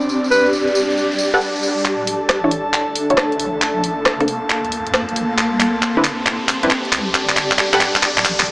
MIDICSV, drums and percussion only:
0, 0, Header, 1, 2, 480
1, 0, Start_track
1, 0, Tempo, 441176
1, 97, Time_signature, 4, 2, 24, 8
1, 9265, End_track
2, 0, Start_track
2, 0, Title_t, "Drums"
2, 13, Note_on_c, 9, 54, 31
2, 98, Note_off_c, 9, 54, 0
2, 98, Note_on_c, 9, 54, 52
2, 207, Note_off_c, 9, 54, 0
2, 263, Note_on_c, 9, 54, 34
2, 341, Note_off_c, 9, 54, 0
2, 341, Note_on_c, 9, 54, 79
2, 450, Note_off_c, 9, 54, 0
2, 502, Note_on_c, 9, 54, 33
2, 574, Note_off_c, 9, 54, 0
2, 574, Note_on_c, 9, 54, 49
2, 683, Note_off_c, 9, 54, 0
2, 734, Note_on_c, 9, 54, 32
2, 817, Note_off_c, 9, 54, 0
2, 817, Note_on_c, 9, 54, 85
2, 926, Note_off_c, 9, 54, 0
2, 980, Note_on_c, 9, 54, 39
2, 1058, Note_off_c, 9, 54, 0
2, 1058, Note_on_c, 9, 54, 50
2, 1167, Note_off_c, 9, 54, 0
2, 1215, Note_on_c, 9, 54, 31
2, 1290, Note_off_c, 9, 54, 0
2, 1290, Note_on_c, 9, 54, 88
2, 1398, Note_off_c, 9, 54, 0
2, 1457, Note_on_c, 9, 54, 36
2, 1535, Note_off_c, 9, 54, 0
2, 1535, Note_on_c, 9, 54, 45
2, 1644, Note_off_c, 9, 54, 0
2, 1695, Note_on_c, 9, 54, 35
2, 1773, Note_off_c, 9, 54, 0
2, 1773, Note_on_c, 9, 54, 81
2, 1882, Note_off_c, 9, 54, 0
2, 1933, Note_on_c, 9, 54, 39
2, 2015, Note_on_c, 9, 39, 46
2, 2015, Note_on_c, 9, 42, 62
2, 2041, Note_off_c, 9, 54, 0
2, 2124, Note_off_c, 9, 39, 0
2, 2124, Note_off_c, 9, 42, 0
2, 2256, Note_on_c, 9, 46, 102
2, 2364, Note_off_c, 9, 46, 0
2, 2495, Note_on_c, 9, 37, 110
2, 2495, Note_on_c, 9, 39, 49
2, 2495, Note_on_c, 9, 42, 63
2, 2604, Note_off_c, 9, 37, 0
2, 2604, Note_off_c, 9, 39, 0
2, 2604, Note_off_c, 9, 42, 0
2, 2735, Note_on_c, 9, 46, 107
2, 2844, Note_off_c, 9, 46, 0
2, 2976, Note_on_c, 9, 39, 52
2, 2976, Note_on_c, 9, 42, 63
2, 3085, Note_off_c, 9, 39, 0
2, 3085, Note_off_c, 9, 42, 0
2, 3215, Note_on_c, 9, 46, 106
2, 3324, Note_off_c, 9, 46, 0
2, 3374, Note_on_c, 9, 42, 64
2, 3455, Note_off_c, 9, 42, 0
2, 3455, Note_on_c, 9, 37, 115
2, 3455, Note_on_c, 9, 39, 55
2, 3455, Note_on_c, 9, 42, 62
2, 3564, Note_off_c, 9, 37, 0
2, 3564, Note_off_c, 9, 39, 0
2, 3564, Note_off_c, 9, 42, 0
2, 3615, Note_on_c, 9, 42, 35
2, 3694, Note_on_c, 9, 46, 106
2, 3723, Note_off_c, 9, 42, 0
2, 3803, Note_off_c, 9, 46, 0
2, 3935, Note_on_c, 9, 39, 59
2, 3935, Note_on_c, 9, 42, 62
2, 4043, Note_off_c, 9, 39, 0
2, 4043, Note_off_c, 9, 42, 0
2, 4174, Note_on_c, 9, 46, 102
2, 4283, Note_off_c, 9, 46, 0
2, 4415, Note_on_c, 9, 37, 120
2, 4415, Note_on_c, 9, 39, 61
2, 4415, Note_on_c, 9, 42, 60
2, 4524, Note_off_c, 9, 37, 0
2, 4524, Note_off_c, 9, 39, 0
2, 4524, Note_off_c, 9, 42, 0
2, 4575, Note_on_c, 9, 37, 53
2, 4575, Note_on_c, 9, 46, 60
2, 4655, Note_off_c, 9, 46, 0
2, 4655, Note_on_c, 9, 46, 104
2, 4684, Note_off_c, 9, 37, 0
2, 4764, Note_off_c, 9, 46, 0
2, 4895, Note_on_c, 9, 39, 66
2, 4895, Note_on_c, 9, 42, 60
2, 5004, Note_off_c, 9, 39, 0
2, 5004, Note_off_c, 9, 42, 0
2, 5055, Note_on_c, 9, 42, 35
2, 5135, Note_on_c, 9, 46, 107
2, 5164, Note_off_c, 9, 42, 0
2, 5244, Note_off_c, 9, 46, 0
2, 5294, Note_on_c, 9, 42, 62
2, 5376, Note_off_c, 9, 42, 0
2, 5376, Note_on_c, 9, 37, 121
2, 5376, Note_on_c, 9, 39, 68
2, 5376, Note_on_c, 9, 42, 61
2, 5484, Note_off_c, 9, 37, 0
2, 5484, Note_off_c, 9, 39, 0
2, 5484, Note_off_c, 9, 42, 0
2, 5535, Note_on_c, 9, 42, 36
2, 5616, Note_on_c, 9, 46, 102
2, 5644, Note_off_c, 9, 42, 0
2, 5725, Note_off_c, 9, 46, 0
2, 5856, Note_on_c, 9, 39, 75
2, 5856, Note_on_c, 9, 42, 62
2, 5964, Note_off_c, 9, 39, 0
2, 5964, Note_off_c, 9, 42, 0
2, 6095, Note_on_c, 9, 39, 75
2, 6095, Note_on_c, 9, 46, 99
2, 6204, Note_off_c, 9, 39, 0
2, 6204, Note_off_c, 9, 46, 0
2, 6336, Note_on_c, 9, 39, 78
2, 6336, Note_on_c, 9, 42, 63
2, 6445, Note_off_c, 9, 39, 0
2, 6445, Note_off_c, 9, 42, 0
2, 6575, Note_on_c, 9, 39, 82
2, 6575, Note_on_c, 9, 46, 102
2, 6684, Note_off_c, 9, 39, 0
2, 6684, Note_off_c, 9, 46, 0
2, 6815, Note_on_c, 9, 39, 81
2, 6815, Note_on_c, 9, 42, 64
2, 6924, Note_off_c, 9, 39, 0
2, 6924, Note_off_c, 9, 42, 0
2, 7056, Note_on_c, 9, 39, 83
2, 7056, Note_on_c, 9, 46, 102
2, 7165, Note_off_c, 9, 39, 0
2, 7165, Note_off_c, 9, 46, 0
2, 7215, Note_on_c, 9, 42, 60
2, 7295, Note_off_c, 9, 42, 0
2, 7295, Note_on_c, 9, 39, 86
2, 7295, Note_on_c, 9, 42, 60
2, 7403, Note_off_c, 9, 39, 0
2, 7403, Note_off_c, 9, 42, 0
2, 7453, Note_on_c, 9, 42, 35
2, 7534, Note_on_c, 9, 39, 89
2, 7534, Note_on_c, 9, 46, 103
2, 7562, Note_off_c, 9, 42, 0
2, 7643, Note_off_c, 9, 39, 0
2, 7643, Note_off_c, 9, 46, 0
2, 7774, Note_on_c, 9, 39, 90
2, 7774, Note_on_c, 9, 42, 62
2, 7883, Note_off_c, 9, 39, 0
2, 7883, Note_off_c, 9, 42, 0
2, 7933, Note_on_c, 9, 39, 85
2, 8016, Note_off_c, 9, 39, 0
2, 8016, Note_on_c, 9, 39, 92
2, 8016, Note_on_c, 9, 46, 98
2, 8125, Note_off_c, 9, 39, 0
2, 8125, Note_off_c, 9, 46, 0
2, 8175, Note_on_c, 9, 39, 83
2, 8255, Note_off_c, 9, 39, 0
2, 8255, Note_on_c, 9, 39, 98
2, 8255, Note_on_c, 9, 42, 65
2, 8364, Note_off_c, 9, 39, 0
2, 8364, Note_off_c, 9, 42, 0
2, 8415, Note_on_c, 9, 39, 88
2, 8415, Note_on_c, 9, 46, 60
2, 8495, Note_off_c, 9, 39, 0
2, 8495, Note_off_c, 9, 46, 0
2, 8495, Note_on_c, 9, 39, 99
2, 8495, Note_on_c, 9, 46, 98
2, 8604, Note_off_c, 9, 39, 0
2, 8604, Note_off_c, 9, 46, 0
2, 8655, Note_on_c, 9, 39, 88
2, 8736, Note_off_c, 9, 39, 0
2, 8736, Note_on_c, 9, 39, 98
2, 8736, Note_on_c, 9, 42, 63
2, 8845, Note_off_c, 9, 39, 0
2, 8845, Note_off_c, 9, 42, 0
2, 8895, Note_on_c, 9, 39, 94
2, 8895, Note_on_c, 9, 42, 36
2, 8977, Note_off_c, 9, 39, 0
2, 8977, Note_on_c, 9, 39, 101
2, 8977, Note_on_c, 9, 46, 102
2, 9004, Note_off_c, 9, 42, 0
2, 9086, Note_off_c, 9, 39, 0
2, 9086, Note_off_c, 9, 46, 0
2, 9136, Note_on_c, 9, 39, 91
2, 9136, Note_on_c, 9, 42, 64
2, 9245, Note_off_c, 9, 39, 0
2, 9245, Note_off_c, 9, 42, 0
2, 9265, End_track
0, 0, End_of_file